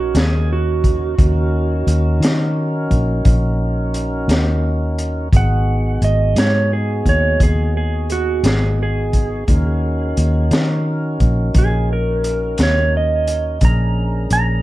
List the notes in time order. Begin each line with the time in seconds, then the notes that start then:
Already playing: A#1 C#4 D#4 F#4 A#4
0.15 D#2, snare, closed hi-hat
0.19 G#4
0.53 F#4
0.84 kick, closed hi-hat
1.18 D#2 C#4 D#4 F#4 A#4, kick, closed hi-hat
1.87 D#2, closed hi-hat
2.20 D#3, closed hi-hat
2.25 snare
2.90 A#1, kick, closed hi-hat
3.25 A#1, kick, closed hi-hat
3.94 closed hi-hat
4.28 D#2, snare, closed hi-hat
4.98 closed hi-hat
5.33 G#1 B3 D#4 F#4 G#4 F#5, kick, closed hi-hat
6.02 G#1 D#5, closed hi-hat
6.36 G#2 C#5, snare, closed hi-hat
6.73 G#4
7.05 D#2 C#5, kick, closed hi-hat
7.40 D#2 G#4, kick, closed hi-hat
7.77 G#4
8.10 F#4, closed hi-hat
8.43 G#1, snare, closed hi-hat
8.47 G#4
8.83 G#4
9.13 kick, closed hi-hat
9.48 D#2 C#4 D#4 F#4 A#4, kick, closed hi-hat
10.17 D#2, closed hi-hat
10.51 D#3, snare, closed hi-hat
11.20 A#1, kick, closed hi-hat
11.54 A#1, kick, closed hi-hat
11.58 G#4
11.93 A#4
12.24 closed hi-hat
12.58 D#2, snare, closed hi-hat
12.63 C#5
12.97 D#5
13.27 closed hi-hat
13.61 A#1 C#4 D4 G#4 A#4 A#5, kick, closed hi-hat
14.30 A#1 A#5, closed hi-hat